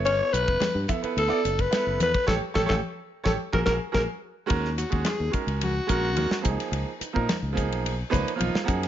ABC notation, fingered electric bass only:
X:1
M:4/4
L:1/16
Q:1/4=108
K:Glyd
V:1 name="Fingered electric bass" clef=bass
G,,,2 B,,, F,,, z G,, z2 D,, z F,,,2 z F,,, E,, z | A,,, z A,,, A,,, z3 A,,, z ^A,,, A,,, z A,,, z3 | [K:Ebm] E,,3 E,, z E,, z D,,3 B,,,2 E,, z D,, z | D,, z2 B,, z D,,2 C,,3 D,, z C,, z G,,2 |]